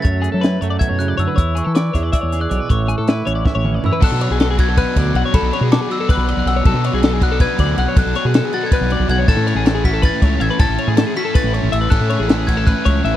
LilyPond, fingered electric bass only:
\new Staff \with { instrumentName = "Fingered electric bass" } { \clef bass \time 7/8 \key b \dorian \tempo 4 = 159 fis,8. fis8. fis,8 r16 fis,8. fis,16 r16 | e,8. e8. e,8 r16 e,8. b,,16 r16 | a,,8. a,8. a,,8 r16 a,,8. fis,16 r16 | b,,16 b,8 b,,4.~ b,,16 d,8 b,,16 r16 |
b,,16 b,,16 r16 b,8 r4 b,,8 b,,16 b,,8 | b,,16 b,8 b,,4.~ b,,16 d,8 b,,16 r16 | b,,16 b,,16 r16 b,8 r4 b,,8 b,,16 b,,8 | a,,16 a,8 a,,4.~ a,,16 cis,8 a,,16 r16 |
a,,16 a,,16 r16 a,8 r4 a,,8 a,,16 a,,8 | a,,16 a,8 a,,4.~ a,,16 cis,8 a,,16 r16 | }